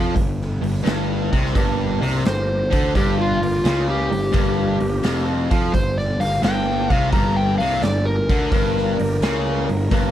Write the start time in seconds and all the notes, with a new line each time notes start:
Already playing: F2 F3
0.15 G1 G2, kick, open hi-hat
0.41 snare
0.62 G1 G2, open hi-hat
0.84 G1 G2, snare, open hi-hat
1.32 C2 C3, kick, open hi-hat
1.46 snare
1.53 G1 G2 A#3, kick, open hi-hat
1.57 D4 G4 A#4
2.01 C2 C3, open hi-hat
2.23 G1 G2, snare, open hi-hat
2.27 C5
2.71 D2 D3, kick, open hi-hat
2.95 G1 G2 G4, kick, open hi-hat
3.21 F4
3.42 G1 G2 A#3 G4 A#4 D5, open hi-hat
3.64 C#2 C#3, snare, open hi-hat
3.90 G4
4.11 G1 G2, open hi-hat
4.32 G1 G2 A#3 D4 G4 A#4, kick, open hi-hat
4.80 G1 G2, open hi-hat
5.03 F1 F2, snare, open hi-hat
5.50 F2 F3, kick, open hi-hat
5.73 G1 G2 C5, kick, open hi-hat
5.98 D5, snare
6.20 G1 G2 A#3 D4 G4 A#4 F5, open hi-hat
6.42 G1 G2 G5, snare, open hi-hat
6.90 C2 C3, kick, open hi-hat
6.94 F5
7.11 G1 G2 A#3 D4 G4 A4 A#5, kick, open hi-hat
7.37 G5
7.58 C2 C3 F5, open hi-hat
7.82 G1 G2 D5, snare, open hi-hat
8.05 A#4
8.29 D2 D3, kick, open hi-hat
8.51 G1 G2, kick, open hi-hat
8.78 snare
8.99 G1 G2 A#3 G4 A#4 D5, open hi-hat
9.21 C#2 C#3, snare, open hi-hat
9.69 G1 G2, open hi-hat
9.91 G1 G2 A#3 D4 G4 A#4, kick, open hi-hat